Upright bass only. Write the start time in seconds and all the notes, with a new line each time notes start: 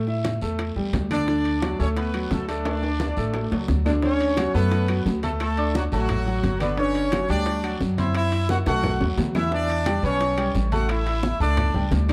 Already playing: A2
0.42 E2
0.76 E2
0.93 D2
1.80 D2
2.31 D2
3.17 A1
3.52 C#2
3.69 D2
4.54 F#2
5.06 D2
5.92 A1
6.44 G1
7.29 D2
7.81 F#2
8.67 B1
9.00 D#2
9.17 E2
10.03 B1
10.55 A1
11.40 C#2
11.74 C#2
11.91 D2